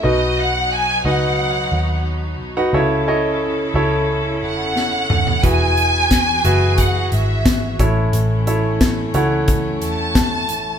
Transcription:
<<
  \new Staff \with { instrumentName = "Violin section" } { \time 4/4 \key a \lydian \tempo 4 = 89 dis''8 fis''8 gis''8 fis''4. r4 | r2 r8 fis''4. | gis''2 fis''8 e''4 r8 | r2 r8 a''4. | }
  \new Staff \with { instrumentName = "Grand piano" } { \time 4/4 \key a \lydian <dis' fis' b' dis''>4 r8 <dis' fis' b' dis''>4. r8. <dis' fis' b' fis''>16 | <e' a' cis'' e''>16 r16 <e' a' cis'' dis''>8. r16 <e' a' cis'' e''>4. r4 | <fis' gis' b' e''>4 r8 <fis' gis' b' e''>4. r8 <e' a' cis'' e''>8~ | <e' a' cis'' e''>16 r16 <e' a' cis'' e''>8. r16 <e' a' cis'' fis''>4. r4 | }
  \new Staff \with { instrumentName = "Grand piano" } { \clef bass \time 4/4 \key a \lydian b,4. r2 r8 | cis4. r2 r8 | e4. r2 a,8~ | a,4 r2. | }
  \new Staff \with { instrumentName = "String section" } { \time 4/4 \key a \lydian << { <fis b dis'>1 | <cis' e' a'>1 | <b fis' gis'>2.~ <b fis' gis'>8 <a cis'>8~ | <a cis'>1 | } \\ { r1 | cis1 | e1~ | e1 | } >> }
  \new Staff \with { instrumentName = "Picked electric bass" } { \clef bass \time 4/4 \key a \lydian b,,4. cis,4 dis,4 b,,8 | cis,4. cis,4 e,,4 dis,8 | e,,4. fis,,4 gis,,4 a,,8 | a,,4. cis,4 e,4 a,,8 | }
  \new DrumStaff \with { instrumentName = "Drums" } \drummode { \time 4/4 r4 r4 r4 r4 | r4 r4 r4 sn8 toml16 tomfh16 | <hh bd>8 hh8 <hh bd sn>8 hh8 <hh bd>8 hh8 <hh bd sn>8 <hh bd>8 | hh8 hh8 <hh bd sn>8 hh8 <hh bd>8 hh8 <hh bd sn>8 hh8 | }
>>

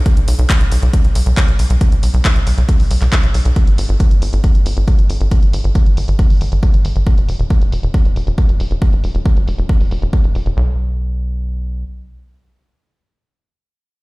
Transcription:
<<
  \new Staff \with { instrumentName = "Analog synth bass" } { \clef bass \time 4/4 \key e \dorian \tempo 4 = 137 r16 b,,16 b,,16 b,,16 r16 b,,16 b,,16 b,,16 r16 b,,16 b,,16 b,,16 r16 b,,16 b,,16 b,,16 | r16 b,,16 b,,16 b,,16 r16 b,,16 b,,16 b,,16 r16 b,,16 b,,16 b,,16 r16 b,,16 b,,16 b,,16 | r16 g,,16 g,,16 g,,16 r16 g,,16 g,,16 g,,16 r16 g,,16 g,,16 g,,16 r16 g,,16 g,,16 g,,16 | r16 g,,16 g,,16 g,,16 r16 g,,16 g,,16 g,,16 r16 g,,16 g,,16 g,,16 r16 g,,16 g,,16 g,,16 |
r16 e,,16 e,,16 e,,16 r16 e,,16 e,,16 e,,16 r16 e,,16 e,,16 e,,16 r16 e,,16 e,,16 e,,16 | r16 e,,16 e,,16 e,,16 r16 e,,16 e,,16 e,,16 r16 e,,16 e,,16 e,,16 r16 e,,16 e,,16 e,,16 | b,,2. r4 | r1 | }
  \new DrumStaff \with { instrumentName = "Drums" } \drummode { \time 4/4 <hh bd>16 hh16 hho16 hh16 <hc hh bd>16 hh16 hho16 hh16 <hh bd>16 hh16 hho16 hh16 <hc hh bd>16 hh16 hho16 hh16 | <hh bd>16 hh16 hho16 hh16 <hc hh bd>16 hh16 hho16 hh16 <hh bd>16 hho16 hho16 <hc hh>16 <hc hh bd>16 hh16 hho16 hh16 | <hh bd>16 hh16 hho16 hh16 <hh bd>16 hh16 hho16 hh16 <hh bd>16 hh16 hho16 hh16 <hh bd>16 hh16 hho16 hh16 | <hh bd>16 hh16 hho16 hh16 <hh bd>16 hh16 hho16 hh16 <hh bd>16 hho16 hho16 hh16 <hh bd>16 hh16 hho16 hh16 |
<hh bd>16 hh16 hho16 hh16 <hh bd>16 hh16 hho16 hh16 <hh bd>16 hh16 hho16 hh16 <hh bd>16 hh16 hho16 hh16 | <hh bd>16 hh16 hho16 hh16 <hh bd>16 hh16 hho16 hh16 <hh bd>16 hho16 hho16 hh16 <hh bd>16 hh16 hho16 hh16 | r4 r4 r4 r4 | r4 r4 r4 r4 | }
>>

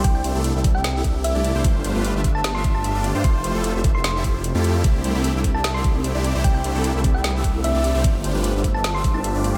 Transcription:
<<
  \new Staff \with { instrumentName = "Synth pluck" } { \time 4/4 \key c \major \tempo 4 = 150 g''16 g''16 r4 r16 g''16 r4 e''8. r16 | r4. r16 a''16 r16 c'''16 r16 a''16 r4 | c'''16 r4. c'''16 c'''16 r4. r16 | r4. r16 a''16 r16 c'''16 r4. |
g''16 g''16 r4 r16 g''16 r4 e''8. r16 | r4. r16 a''16 r16 c'''16 r16 a''16 r4 | }
  \new Staff \with { instrumentName = "Supersaw synth" } { \time 4/4 \key c \major <a d' e' g' c''>8 <a d' e' g' c''>16 <a d' e' g' a'>8 <a d' e' g' e''>4~ <a d' e' g' e''>16 <a d' e' g' e''>8. <a d' e' g' d''>8 <a d' e' g' c''>16 | <a d' f' g' c''>8 <a d' f' g' c''>16 <a d' f' g' b'>8 <a d' f' g' e''>4~ <a d' f' g' e''>16 <a d' f' g' e''>8. <a d' f' g' d''>8 <a d' f' g' c''>16 | <a e' f' g' c''>8 <a e' f' g' c''>16 <a e' f' g' a'>8 <a e' f' g' e''>4~ <a e' f' g' e''>16 <a e' f' g' c''>8 r16 <a e' f' g' a'>8. | <a d' e' g' c''>8 <a d' e' g' c''>16 <a d' e' g' a'>8 <a d' e' g' e''>4~ <a d' e' g' e''>16 <a d' e' g' e''>8. <a d' e' g' d''>8 <a d' e' g' c''>16 |
<a d' e' g' c''>8 <a d' e' g' c''>16 <a d' e' g' a'>8 <a d' e' g' e''>4~ <a d' e' g' e''>16 <a d' e' g' e''>8. <a d' e' g' d''>8 <a d' e' g' c''>16 | <a d' f' g' c''>8 <a d' f' g' c''>16 <a d' f' g' b'>8 <a d' f' g' e''>4~ <a d' f' g' e''>16 <a d' f' g' e''>8. <a d' f' g' d''>8 <a d' f' g' c''>16 | }
  \new Staff \with { instrumentName = "Felt piano" } { \time 4/4 \key c \major r1 | r1 | r1 | r8. <c c' d' e' a'>4.~ <c c' d' e' a'>16 r16 <c c' d' e' a'>4~ <c c' d' e' a'>16~ |
<c c' d' e' a'>8. <c c' d' e' a'>4.~ <c c' d' e' a'>16 r16 <c c' d' e' a'>4~ <c c' d' e' a'>16 | r8. <g d' f' a' c''>4.~ <g d' f' a' c''>16 r16 <g d' f' a' c''>4~ <g d' f' a' c''>16 | }
  \new Staff \with { instrumentName = "Detuned saw bass" } { \clef bass \time 4/4 \key c \major c,8 c,16 c,8 c,4~ c,16 c,8. c,8 c,16 | g,,8 g,,16 g,,8 g,,4~ g,,16 g,,8. g,,8 g,16 | f,,8 f,,16 f,,8 f,,4~ f,,16 f,,8. f,8. | c,8 c,16 c,8 c,4~ c,16 c,8. c,8 c,16 |
c,8 c,16 c,8 c,4~ c,16 c,8. c,8 c,16 | g,,8 g,,16 g,,8 g,,4~ g,,16 g,,8. g,,8 g,16 | }
  \new DrumStaff \with { instrumentName = "Drums" } \drummode { \time 4/4 <hh bd>8 hh8 hh8 <hh bd>8 <hh sn>8 <hh bd>8 hh8 hh8 | <hh bd>8 hh8 hh8 <hh bd>8 <hh sn>8 <hh bd>8 hh8 hh8 | <hh bd>8 hh8 hh8 <hh bd>8 <hh sn>8 <hh bd>8 hh8 hh8 | <hh bd>8 hh8 hh8 <hh bd>8 <hh sn>8 <hh bd>8 hh8 hh8 |
<hh bd>8 hh8 hh8 <hh bd>8 <hh sn>8 <hh bd>8 hh8 hh8 | <hh bd>8 hh8 hh8 <hh bd>8 <hh sn>8 <hh bd>8 hh8 hh8 | }
>>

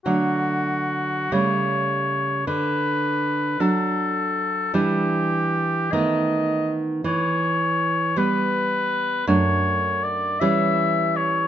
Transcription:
<<
  \new Staff \with { instrumentName = "Oboe" } { \time 6/8 \key d \major \tempo 4. = 53 fis'4. cis''4. | b'4. a'4. | g'4. dis''4 r8 | cis''4. b'4. |
cis''4 d''8 e''4 cis''8 | }
  \new Staff \with { instrumentName = "Nylon-string guitar" } { \clef bass \time 6/8 \key d \major <d fis a>4. <cis g a>4. | d4. <fis d'>4. | <e g d'>4. <dis a b>4. | e4. <g b>4. |
<fis, a d'>4. <e g cis'>4. | }
>>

